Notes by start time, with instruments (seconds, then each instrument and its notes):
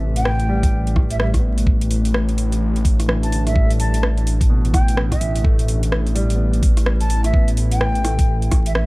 Already playing: detuned saw bass A1, ambient pad C3 E3 A3 G4 B4, upright piano A3 C4 D4
0.16 flute G5, closed hi-hat
0.25 cross-stick
0.40 closed hi-hat
0.49 upright piano G3
0.63 kick, closed hi-hat
0.87 closed hi-hat
0.96 kick, cross-stick
1.10 flute E5, closed hi-hat
1.20 upright piano G3, flute E5, cross-stick
1.34 kick, cross-stick, closed hi-hat
1.39 upright piano B3
1.58 closed hi-hat
1.67 detuned saw bass A1, kick
1.81 closed hi-hat
1.91 open hi-hat
2.05 ambient pad D4, closed hi-hat
2.14 cross-stick
2.29 closed hi-hat
2.38 open hi-hat
2.52 closed hi-hat
2.76 closed hi-hat
2.85 kick, open hi-hat
3.00 cross-stick, closed hi-hat
3.08 upright piano E3, cross-stick
3.23 flute A5, closed hi-hat
3.32 upright piano D3, open hi-hat
3.47 flute E5, cross-stick, closed hi-hat
3.51 upright piano G3
3.56 kick
3.65 upright piano A3
3.71 closed hi-hat
3.79 flute A5, open hi-hat
3.94 closed hi-hat
4.03 cross-stick
4.17 closed hi-hat
4.27 open hi-hat
4.41 kick, closed hi-hat
4.50 upright piano B2
4.65 closed hi-hat
4.74 flute G5, kick, cross-stick, open hi-hat
4.88 closed hi-hat
4.97 cross-stick
5.12 flute E5, kick, cross-stick, closed hi-hat
5.21 upright piano E3, open hi-hat
5.36 closed hi-hat
5.44 upright piano A3, kick
5.59 closed hi-hat
5.68 open hi-hat
5.83 closed hi-hat
5.92 cross-stick
6.07 closed hi-hat
6.15 upright piano G3, open hi-hat
6.22 ambient pad E4
6.30 closed hi-hat
6.35 upright piano B3
6.53 closed hi-hat
6.63 kick, open hi-hat
6.77 cross-stick, closed hi-hat
6.86 cross-stick
7.01 flute A5, closed hi-hat
7.10 open hi-hat
7.24 flute E5, cross-stick, closed hi-hat
7.34 upright piano B3, kick
7.48 closed hi-hat
7.57 open hi-hat
7.71 flute G5, closed hi-hat
7.81 cross-stick
7.95 closed hi-hat
8.04 upright piano A3, cross-stick, open hi-hat
8.19 kick, closed hi-hat
8.42 closed hi-hat
8.52 kick, cross-stick, open hi-hat
8.66 flute E5, closed hi-hat
8.75 flute E5, cross-stick